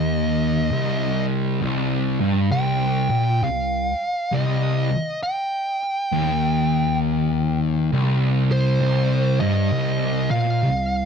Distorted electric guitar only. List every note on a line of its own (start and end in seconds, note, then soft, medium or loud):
0.00 0.70 D#2 loud
0.72 1.61 C2 loud
1.62 2.19 C2 loud
2.21 2.51 G2 loud
2.52 3.09 C2 loud
3.11 3.41 A#2 loud
3.43 3.89 C2 medium
4.33 4.89 C2 loud
6.13 7.92 D#2 medium
7.92 8.81 C2 loud
8.82 9.39 C2 loud
9.41 9.72 G2 loud
9.73 10.29 C2 loud
10.31 10.61 A#2 loud
10.63 11.05 C2 medium